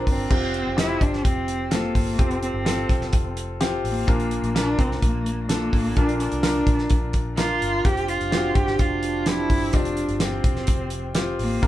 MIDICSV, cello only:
0, 0, Header, 1, 2, 480
1, 0, Start_track
1, 0, Key_signature, -1, "major"
1, 0, Tempo, 471698
1, 312, Time_signature, 4, 2, 24, 8
1, 11879, End_track
2, 0, Start_track
2, 0, Title_t, "Cello"
2, 0, Program_c, 0, 42
2, 72, Note_on_c, 0, 60, 97
2, 802, Note_on_c, 0, 64, 108
2, 817, Note_off_c, 0, 60, 0
2, 1035, Note_on_c, 0, 62, 95
2, 1050, Note_off_c, 0, 64, 0
2, 1266, Note_on_c, 0, 60, 95
2, 1282, Note_off_c, 0, 62, 0
2, 1747, Note_on_c, 0, 58, 90
2, 1762, Note_off_c, 0, 60, 0
2, 2229, Note_on_c, 0, 60, 93
2, 2244, Note_off_c, 0, 58, 0
2, 2464, Note_off_c, 0, 60, 0
2, 2470, Note_on_c, 0, 60, 86
2, 3390, Note_off_c, 0, 60, 0
2, 3934, Note_on_c, 0, 58, 97
2, 4646, Note_on_c, 0, 62, 108
2, 4661, Note_off_c, 0, 58, 0
2, 4872, Note_on_c, 0, 60, 93
2, 4888, Note_off_c, 0, 62, 0
2, 5112, Note_off_c, 0, 60, 0
2, 5122, Note_on_c, 0, 58, 85
2, 5563, Note_off_c, 0, 58, 0
2, 5587, Note_on_c, 0, 58, 99
2, 6061, Note_on_c, 0, 62, 110
2, 6076, Note_off_c, 0, 58, 0
2, 6303, Note_off_c, 0, 62, 0
2, 6309, Note_on_c, 0, 62, 94
2, 7229, Note_off_c, 0, 62, 0
2, 7498, Note_on_c, 0, 65, 109
2, 7991, Note_on_c, 0, 67, 108
2, 8007, Note_off_c, 0, 65, 0
2, 8227, Note_on_c, 0, 65, 96
2, 8242, Note_off_c, 0, 67, 0
2, 8699, Note_on_c, 0, 67, 103
2, 8714, Note_off_c, 0, 65, 0
2, 8950, Note_on_c, 0, 65, 86
2, 8965, Note_off_c, 0, 67, 0
2, 9428, Note_on_c, 0, 64, 108
2, 9443, Note_off_c, 0, 65, 0
2, 9925, Note_on_c, 0, 62, 98
2, 9940, Note_off_c, 0, 64, 0
2, 10412, Note_on_c, 0, 60, 87
2, 10428, Note_off_c, 0, 62, 0
2, 11362, Note_off_c, 0, 60, 0
2, 11612, Note_on_c, 0, 58, 89
2, 11879, Note_off_c, 0, 58, 0
2, 11879, End_track
0, 0, End_of_file